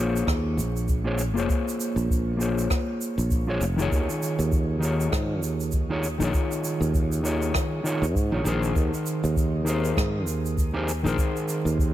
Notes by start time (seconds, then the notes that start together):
Already playing: A#1 A#3 F4 G#4
0.00 C5 C#5
0.16 shaker
0.27 D#2, kick, cross-stick, shaker
0.57 A#1, shaker
0.77 shaker
0.88 kick, shaker
1.04 A#3 F4 G#4 C5 C#5
1.19 shaker
1.34 F1 A#3 F4 G#4, shaker
1.38 C5 C#5
1.49 kick, shaker
1.68 shaker
1.80 shaker
1.96 A#1, shaker
2.10 kick, shaker
2.37 A#3 F4 G#4, shaker
2.41 C5 C#5
2.58 shaker
2.70 kick, cross-stick, shaker
3.01 shaker
3.18 A#1, shaker
3.31 kick, shaker
3.47 A#3 F4 G#4 C5 C#5
3.61 F1, shaker
3.76 D#3 D#4 F4 G#4, shaker
3.82 C#5
3.91 D#2, kick, shaker
4.10 shaker
4.23 shaker
4.39 D#2, shaker
4.52 kick, shaker
4.79 D#3 D#4 F4
4.83 G#4 C#5, shaker
5.00 shaker
5.12 G#2, kick, cross-stick, shaker
5.43 D#2, shaker
5.60 shaker
5.72 kick, shaker
5.89 D#3 D#4 F4 G#4 C#5
6.04 shaker
6.18 A#1 D#3 D#4 F4, shaker
6.23 G#4 C#5
6.33 kick, shaker
6.52 shaker
6.64 shaker
6.81 D#2, shaker
6.94 kick, shaker
7.12 shaker
7.23 D#3 D#4 F4 G#4 C#5, shaker
7.42 shaker
7.54 kick, cross-stick, shaker
7.83 D#3 D#4 F4 G#4 C#5, shaker
8.02 D#2, shaker
8.15 G#2, kick, shaker
8.31 A#1 D#3 D#4 F4 G#4 C#5
8.43 A#1 D#3 D#4 G#4, shaker
8.47 A#4 C5
8.63 shaker
8.75 D#2, kick, shaker
8.94 shaker
9.06 shaker
9.24 D#2, shaker
9.36 kick, shaker
9.64 D#3 D#4 G#4, shaker
9.68 A#4 C5
9.85 shaker
9.97 G#2, kick, cross-stick, shaker
10.27 D#2, shaker
10.45 shaker
10.57 kick, shaker
10.73 D#3 D#4 G4 G#4 A#4 C5
10.89 shaker
11.03 A#1 D#3 D#4 G#4, shaker
11.08 A#4 C5
11.18 kick, shaker
11.37 shaker
11.49 shaker
11.65 D#2, shaker
11.78 kick, shaker